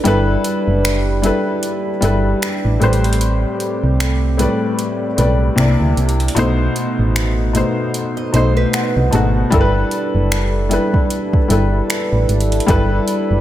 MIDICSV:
0, 0, Header, 1, 6, 480
1, 0, Start_track
1, 0, Key_signature, 1, "major"
1, 0, Tempo, 789474
1, 32, Time_signature, 4, 2, 24, 8
1, 8151, End_track
2, 0, Start_track
2, 0, Title_t, "Nylon-string guitar"
2, 0, Program_c, 0, 24
2, 4967, Note_on_c, 0, 75, 73
2, 5065, Note_off_c, 0, 75, 0
2, 5070, Note_on_c, 0, 72, 79
2, 5203, Note_off_c, 0, 72, 0
2, 5208, Note_on_c, 0, 71, 72
2, 5766, Note_off_c, 0, 71, 0
2, 8151, End_track
3, 0, Start_track
3, 0, Title_t, "Felt piano"
3, 0, Program_c, 1, 0
3, 0, Control_c, 1, 64, 127
3, 0, Note_on_c, 1, 55, 73
3, 0, Note_on_c, 1, 64, 68
3, 0, Note_on_c, 1, 69, 70
3, 0, Note_on_c, 1, 70, 68
3, 0, Note_on_c, 1, 71, 81
3, 23, Note_off_c, 1, 55, 0
3, 23, Note_on_c, 1, 55, 104
3, 29, Note_off_c, 1, 64, 0
3, 29, Note_on_c, 1, 64, 95
3, 36, Note_off_c, 1, 69, 0
3, 36, Note_on_c, 1, 69, 94
3, 44, Note_off_c, 1, 71, 0
3, 44, Note_on_c, 1, 71, 116
3, 633, Note_off_c, 1, 55, 0
3, 637, Note_off_c, 1, 64, 0
3, 640, Note_off_c, 1, 69, 0
3, 644, Note_off_c, 1, 71, 0
3, 742, Note_on_c, 1, 55, 78
3, 750, Note_on_c, 1, 64, 75
3, 758, Note_on_c, 1, 69, 76
3, 766, Note_on_c, 1, 71, 91
3, 1153, Note_off_c, 1, 55, 0
3, 1157, Note_off_c, 1, 64, 0
3, 1161, Note_off_c, 1, 69, 0
3, 1165, Note_off_c, 1, 71, 0
3, 1220, Note_on_c, 1, 55, 85
3, 1227, Note_on_c, 1, 64, 75
3, 1234, Note_on_c, 1, 69, 73
3, 1243, Note_on_c, 1, 71, 88
3, 1632, Note_off_c, 1, 55, 0
3, 1636, Note_off_c, 1, 64, 0
3, 1639, Note_off_c, 1, 69, 0
3, 1644, Note_off_c, 1, 71, 0
3, 1701, Note_on_c, 1, 45, 85
3, 1708, Note_on_c, 1, 55, 77
3, 1716, Note_on_c, 1, 71, 82
3, 1721, Control_c, 1, 64, 0
3, 1723, Note_off_c, 1, 70, 0
3, 1723, Note_on_c, 1, 72, 97
3, 1813, Control_c, 1, 64, 127
3, 2502, Note_off_c, 1, 45, 0
3, 2505, Note_off_c, 1, 55, 0
3, 2509, Note_off_c, 1, 71, 0
3, 2513, Note_off_c, 1, 72, 0
3, 2660, Note_on_c, 1, 45, 77
3, 2669, Note_on_c, 1, 55, 72
3, 2676, Note_on_c, 1, 71, 75
3, 2684, Note_on_c, 1, 74, 86
3, 3072, Note_off_c, 1, 45, 0
3, 3077, Note_off_c, 1, 55, 0
3, 3080, Note_off_c, 1, 71, 0
3, 3084, Note_off_c, 1, 74, 0
3, 3141, Note_on_c, 1, 45, 73
3, 3148, Note_on_c, 1, 55, 66
3, 3155, Note_on_c, 1, 71, 69
3, 3164, Note_on_c, 1, 74, 81
3, 3379, Note_on_c, 1, 48, 80
3, 3386, Note_off_c, 1, 45, 0
3, 3388, Note_on_c, 1, 58, 74
3, 3390, Note_off_c, 1, 55, 0
3, 3393, Note_off_c, 1, 71, 0
3, 3394, Note_off_c, 1, 74, 0
3, 3395, Note_on_c, 1, 64, 71
3, 3398, Control_c, 1, 64, 0
3, 3403, Note_on_c, 1, 74, 88
3, 3499, Control_c, 1, 64, 127
3, 3792, Note_off_c, 1, 48, 0
3, 3796, Note_off_c, 1, 58, 0
3, 3800, Note_off_c, 1, 64, 0
3, 3804, Note_off_c, 1, 74, 0
3, 3860, Note_on_c, 1, 47, 107
3, 3868, Note_on_c, 1, 57, 91
3, 3876, Note_on_c, 1, 63, 94
3, 3880, Control_c, 1, 64, 0
3, 3883, Note_on_c, 1, 72, 110
3, 3972, Control_c, 1, 64, 127
3, 4472, Note_off_c, 1, 47, 0
3, 4476, Note_off_c, 1, 57, 0
3, 4480, Note_off_c, 1, 63, 0
3, 4484, Note_off_c, 1, 72, 0
3, 4580, Note_on_c, 1, 47, 75
3, 4588, Note_on_c, 1, 57, 72
3, 4594, Note_on_c, 1, 63, 72
3, 4602, Note_on_c, 1, 72, 88
3, 4992, Note_off_c, 1, 47, 0
3, 4996, Note_off_c, 1, 57, 0
3, 4999, Note_off_c, 1, 63, 0
3, 5003, Note_off_c, 1, 72, 0
3, 5062, Note_on_c, 1, 47, 78
3, 5070, Note_on_c, 1, 57, 73
3, 5073, Note_on_c, 1, 75, 69
3, 5078, Note_on_c, 1, 63, 74
3, 5085, Note_on_c, 1, 72, 90
3, 5296, Note_off_c, 1, 75, 0
3, 5312, Note_on_c, 1, 78, 62
3, 5473, Note_off_c, 1, 47, 0
3, 5477, Note_off_c, 1, 57, 0
3, 5481, Note_off_c, 1, 63, 0
3, 5485, Note_off_c, 1, 72, 0
3, 5535, Note_off_c, 1, 78, 0
3, 5539, Note_on_c, 1, 47, 76
3, 5546, Note_on_c, 1, 57, 69
3, 5549, Note_on_c, 1, 81, 70
3, 5555, Note_on_c, 1, 63, 65
3, 5561, Note_on_c, 1, 66, 85
3, 5748, Note_off_c, 1, 47, 0
3, 5752, Note_off_c, 1, 57, 0
3, 5757, Note_off_c, 1, 63, 0
3, 5759, Note_off_c, 1, 66, 0
3, 5774, Note_off_c, 1, 81, 0
3, 5779, Note_on_c, 1, 55, 104
3, 5787, Note_on_c, 1, 64, 98
3, 5794, Note_on_c, 1, 69, 98
3, 5798, Control_c, 1, 64, 0
3, 5802, Note_on_c, 1, 70, 93
3, 5840, Note_on_c, 1, 71, 110
3, 5842, Note_off_c, 1, 70, 0
3, 5887, Control_c, 1, 64, 127
3, 6391, Note_off_c, 1, 55, 0
3, 6395, Note_off_c, 1, 64, 0
3, 6399, Note_off_c, 1, 69, 0
3, 6422, Note_off_c, 1, 71, 0
3, 6501, Note_on_c, 1, 55, 80
3, 6508, Note_on_c, 1, 64, 76
3, 6516, Note_on_c, 1, 69, 74
3, 6525, Note_on_c, 1, 71, 89
3, 6913, Note_off_c, 1, 55, 0
3, 6916, Note_off_c, 1, 64, 0
3, 6920, Note_off_c, 1, 69, 0
3, 6925, Note_off_c, 1, 71, 0
3, 6981, Note_on_c, 1, 55, 75
3, 6989, Note_on_c, 1, 64, 70
3, 6997, Note_on_c, 1, 69, 68
3, 7004, Note_on_c, 1, 71, 77
3, 7593, Note_off_c, 1, 55, 0
3, 7597, Note_off_c, 1, 64, 0
3, 7600, Note_off_c, 1, 69, 0
3, 7604, Note_off_c, 1, 71, 0
3, 7700, Note_on_c, 1, 55, 104
3, 7707, Note_on_c, 1, 64, 97
3, 7715, Note_on_c, 1, 69, 98
3, 7723, Note_on_c, 1, 71, 114
3, 8151, Note_off_c, 1, 55, 0
3, 8151, Note_off_c, 1, 64, 0
3, 8151, Note_off_c, 1, 69, 0
3, 8151, Note_off_c, 1, 71, 0
3, 8151, End_track
4, 0, Start_track
4, 0, Title_t, "Analog synth pad"
4, 0, Program_c, 2, 89
4, 0, Note_on_c, 2, 55, 79
4, 0, Note_on_c, 2, 62, 70
4, 0, Note_on_c, 2, 64, 75
4, 0, Note_on_c, 2, 71, 81
4, 29, Note_on_c, 2, 67, 74
4, 1687, Note_off_c, 2, 55, 0
4, 1688, Note_off_c, 2, 62, 0
4, 1688, Note_off_c, 2, 64, 0
4, 1688, Note_off_c, 2, 71, 0
4, 1706, Note_on_c, 2, 60, 74
4, 1707, Note_on_c, 2, 57, 82
4, 3366, Note_off_c, 2, 67, 0
4, 3372, Note_off_c, 2, 60, 0
4, 3373, Note_off_c, 2, 57, 0
4, 3386, Note_on_c, 2, 48, 78
4, 3386, Note_on_c, 2, 55, 73
4, 3387, Note_on_c, 2, 58, 75
4, 3387, Note_on_c, 2, 62, 75
4, 3387, Note_on_c, 2, 64, 89
4, 3864, Note_off_c, 2, 48, 0
4, 3864, Note_off_c, 2, 55, 0
4, 3864, Note_off_c, 2, 62, 0
4, 3865, Note_off_c, 2, 58, 0
4, 3865, Note_off_c, 2, 64, 0
4, 3867, Note_on_c, 2, 57, 82
4, 3867, Note_on_c, 2, 59, 69
4, 3868, Note_on_c, 2, 63, 87
4, 5770, Note_off_c, 2, 57, 0
4, 5770, Note_off_c, 2, 59, 0
4, 5771, Note_off_c, 2, 63, 0
4, 5788, Note_on_c, 2, 62, 70
4, 5789, Note_on_c, 2, 69, 70
4, 5789, Note_on_c, 2, 71, 86
4, 5790, Note_on_c, 2, 55, 80
4, 5790, Note_on_c, 2, 64, 73
4, 8151, Note_off_c, 2, 55, 0
4, 8151, Note_off_c, 2, 62, 0
4, 8151, Note_off_c, 2, 64, 0
4, 8151, Note_off_c, 2, 69, 0
4, 8151, Note_off_c, 2, 71, 0
4, 8151, End_track
5, 0, Start_track
5, 0, Title_t, "FM bass"
5, 0, Program_c, 3, 39
5, 34, Note_on_c, 3, 31, 109
5, 227, Note_off_c, 3, 31, 0
5, 412, Note_on_c, 3, 30, 87
5, 800, Note_off_c, 3, 30, 0
5, 1233, Note_on_c, 3, 31, 88
5, 1427, Note_off_c, 3, 31, 0
5, 1612, Note_on_c, 3, 33, 91
5, 1693, Note_off_c, 3, 33, 0
5, 1712, Note_on_c, 3, 33, 95
5, 2100, Note_off_c, 3, 33, 0
5, 2332, Note_on_c, 3, 36, 88
5, 2720, Note_off_c, 3, 36, 0
5, 3153, Note_on_c, 3, 35, 94
5, 3346, Note_off_c, 3, 35, 0
5, 3393, Note_on_c, 3, 36, 105
5, 3505, Note_off_c, 3, 36, 0
5, 3532, Note_on_c, 3, 38, 87
5, 3613, Note_off_c, 3, 38, 0
5, 3633, Note_on_c, 3, 36, 88
5, 3827, Note_off_c, 3, 36, 0
5, 3872, Note_on_c, 3, 35, 100
5, 4066, Note_off_c, 3, 35, 0
5, 4251, Note_on_c, 3, 33, 87
5, 4639, Note_off_c, 3, 33, 0
5, 5072, Note_on_c, 3, 35, 90
5, 5266, Note_off_c, 3, 35, 0
5, 5452, Note_on_c, 3, 36, 96
5, 5533, Note_off_c, 3, 36, 0
5, 5551, Note_on_c, 3, 32, 93
5, 5745, Note_off_c, 3, 32, 0
5, 5791, Note_on_c, 3, 31, 101
5, 5985, Note_off_c, 3, 31, 0
5, 6171, Note_on_c, 3, 30, 90
5, 6559, Note_off_c, 3, 30, 0
5, 6993, Note_on_c, 3, 31, 90
5, 7186, Note_off_c, 3, 31, 0
5, 7374, Note_on_c, 3, 33, 89
5, 7454, Note_off_c, 3, 33, 0
5, 7473, Note_on_c, 3, 32, 80
5, 7666, Note_off_c, 3, 32, 0
5, 7713, Note_on_c, 3, 31, 97
5, 7906, Note_off_c, 3, 31, 0
5, 8092, Note_on_c, 3, 30, 89
5, 8151, Note_off_c, 3, 30, 0
5, 8151, End_track
6, 0, Start_track
6, 0, Title_t, "Drums"
6, 32, Note_on_c, 9, 42, 78
6, 93, Note_off_c, 9, 42, 0
6, 270, Note_on_c, 9, 42, 65
6, 331, Note_off_c, 9, 42, 0
6, 515, Note_on_c, 9, 42, 59
6, 517, Note_on_c, 9, 26, 107
6, 576, Note_off_c, 9, 42, 0
6, 577, Note_off_c, 9, 26, 0
6, 751, Note_on_c, 9, 42, 69
6, 812, Note_off_c, 9, 42, 0
6, 990, Note_on_c, 9, 42, 69
6, 1050, Note_off_c, 9, 42, 0
6, 1229, Note_on_c, 9, 42, 66
6, 1290, Note_off_c, 9, 42, 0
6, 1473, Note_on_c, 9, 42, 66
6, 1476, Note_on_c, 9, 26, 111
6, 1534, Note_off_c, 9, 42, 0
6, 1537, Note_off_c, 9, 26, 0
6, 1712, Note_on_c, 9, 42, 44
6, 1773, Note_off_c, 9, 42, 0
6, 1781, Note_on_c, 9, 42, 52
6, 1842, Note_off_c, 9, 42, 0
6, 1851, Note_on_c, 9, 42, 59
6, 1901, Note_off_c, 9, 42, 0
6, 1901, Note_on_c, 9, 42, 67
6, 1951, Note_off_c, 9, 42, 0
6, 1951, Note_on_c, 9, 42, 76
6, 2012, Note_off_c, 9, 42, 0
6, 2189, Note_on_c, 9, 42, 58
6, 2250, Note_off_c, 9, 42, 0
6, 2434, Note_on_c, 9, 42, 62
6, 2435, Note_on_c, 9, 26, 114
6, 2494, Note_off_c, 9, 42, 0
6, 2496, Note_off_c, 9, 26, 0
6, 2671, Note_on_c, 9, 42, 73
6, 2732, Note_off_c, 9, 42, 0
6, 2910, Note_on_c, 9, 42, 68
6, 2971, Note_off_c, 9, 42, 0
6, 3150, Note_on_c, 9, 42, 70
6, 3211, Note_off_c, 9, 42, 0
6, 3391, Note_on_c, 9, 42, 63
6, 3394, Note_on_c, 9, 26, 112
6, 3452, Note_off_c, 9, 42, 0
6, 3455, Note_off_c, 9, 26, 0
6, 3632, Note_on_c, 9, 42, 41
6, 3693, Note_off_c, 9, 42, 0
6, 3701, Note_on_c, 9, 42, 53
6, 3762, Note_off_c, 9, 42, 0
6, 3769, Note_on_c, 9, 42, 56
6, 3820, Note_off_c, 9, 42, 0
6, 3820, Note_on_c, 9, 42, 67
6, 3870, Note_off_c, 9, 42, 0
6, 3870, Note_on_c, 9, 42, 75
6, 3931, Note_off_c, 9, 42, 0
6, 4109, Note_on_c, 9, 42, 61
6, 4170, Note_off_c, 9, 42, 0
6, 4352, Note_on_c, 9, 42, 59
6, 4353, Note_on_c, 9, 26, 107
6, 4413, Note_off_c, 9, 42, 0
6, 4414, Note_off_c, 9, 26, 0
6, 4589, Note_on_c, 9, 42, 74
6, 4650, Note_off_c, 9, 42, 0
6, 4829, Note_on_c, 9, 42, 69
6, 4890, Note_off_c, 9, 42, 0
6, 5069, Note_on_c, 9, 42, 66
6, 5130, Note_off_c, 9, 42, 0
6, 5310, Note_on_c, 9, 42, 65
6, 5313, Note_on_c, 9, 26, 107
6, 5371, Note_off_c, 9, 42, 0
6, 5374, Note_off_c, 9, 26, 0
6, 5549, Note_on_c, 9, 42, 66
6, 5609, Note_off_c, 9, 42, 0
6, 5789, Note_on_c, 9, 42, 77
6, 5790, Note_on_c, 9, 36, 115
6, 5850, Note_off_c, 9, 42, 0
6, 5851, Note_off_c, 9, 36, 0
6, 6028, Note_on_c, 9, 42, 62
6, 6089, Note_off_c, 9, 42, 0
6, 6273, Note_on_c, 9, 42, 58
6, 6274, Note_on_c, 9, 26, 110
6, 6334, Note_off_c, 9, 42, 0
6, 6335, Note_off_c, 9, 26, 0
6, 6511, Note_on_c, 9, 42, 74
6, 6572, Note_off_c, 9, 42, 0
6, 6651, Note_on_c, 9, 36, 84
6, 6711, Note_off_c, 9, 36, 0
6, 6751, Note_on_c, 9, 42, 70
6, 6812, Note_off_c, 9, 42, 0
6, 6891, Note_on_c, 9, 36, 88
6, 6952, Note_off_c, 9, 36, 0
6, 6993, Note_on_c, 9, 42, 68
6, 7054, Note_off_c, 9, 42, 0
6, 7234, Note_on_c, 9, 42, 66
6, 7237, Note_on_c, 9, 26, 101
6, 7295, Note_off_c, 9, 42, 0
6, 7298, Note_off_c, 9, 26, 0
6, 7473, Note_on_c, 9, 42, 41
6, 7534, Note_off_c, 9, 42, 0
6, 7542, Note_on_c, 9, 42, 52
6, 7603, Note_off_c, 9, 42, 0
6, 7613, Note_on_c, 9, 42, 59
6, 7663, Note_off_c, 9, 42, 0
6, 7663, Note_on_c, 9, 42, 70
6, 7712, Note_off_c, 9, 42, 0
6, 7712, Note_on_c, 9, 36, 108
6, 7712, Note_on_c, 9, 42, 74
6, 7772, Note_off_c, 9, 36, 0
6, 7773, Note_off_c, 9, 42, 0
6, 7950, Note_on_c, 9, 42, 64
6, 8011, Note_off_c, 9, 42, 0
6, 8151, End_track
0, 0, End_of_file